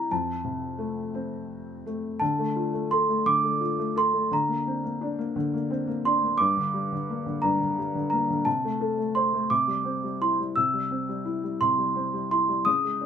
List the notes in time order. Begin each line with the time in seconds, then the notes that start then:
Already playing: C3 G3 E4 G4 A#5
0.11 F2 A5
0.44 C3
0.78 A3
1.14 C4
1.86 A3
2.20 D3 A5
2.39 A3
2.56 F4
2.73 A3
2.91 A4 C6
3.09 A3
3.26 D3 D6
3.44 A3
3.61 F4
3.78 A3
3.96 A4 C6
4.13 A3
4.31 D3 A#5
4.48 A#3
4.67 C4
4.84 A#3
5.01 D4
5.18 A#3
5.36 D3
5.54 A#3
5.71 C4
5.87 A#3
6.05 D4 C6
6.23 A#3
6.38 G2 D6
6.57 D3
6.74 G3
6.92 D3
7.10 A#3
7.26 D3
7.42 G2 A#5
7.61 D3
7.78 G3
7.95 D3
8.10 A#3 A#5
8.30 D3
8.45 C3 A5
8.64 A3
8.81 A4
8.98 A3
9.15 C5 C6
9.34 A3
9.50 C3 D6
9.68 G3
9.85 C4
10.04 G3
10.21 E4 C6
10.40 G3
10.56 C3 E6
10.74 G3
10.91 C4
11.09 G3
11.25 E4
11.44 G3
11.61 C3 C6
11.78 G3
11.95 C4
12.13 G3
12.31 E4 C6
12.48 G3
12.65 C#3 D#6
12.85 G#3
13.01 C#4